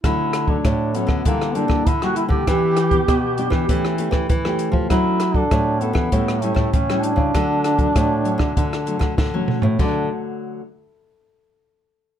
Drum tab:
CC |----------------|----------------|----------------|----------------|
HH |x-x-x-x-xxx-xxx-|x-xxx-x-xxxxx-x-|x-x-x-x-xxx-xxx-|x-xxx-x-xxxx----|
SD |r-r-r--r-r-r-r--|r-r-r--r-r-r-r--|r-r-r--r-r-r-r--|r-r-r--r-r-ro---|
T1 |----------------|----------------|----------------|-------------o--|
T2 |----------------|----------------|----------------|--------------o-|
FT |----------------|----------------|----------------|---------------o|
BD |o--oo--oo--oo--o|o--oo--oo--oo--o|o--oo--oo--oo--o|o--oo--oo--oo---|

CC |x---------------|
HH |----------------|
SD |----------------|
T1 |----------------|
T2 |----------------|
FT |----------------|
BD |o---------------|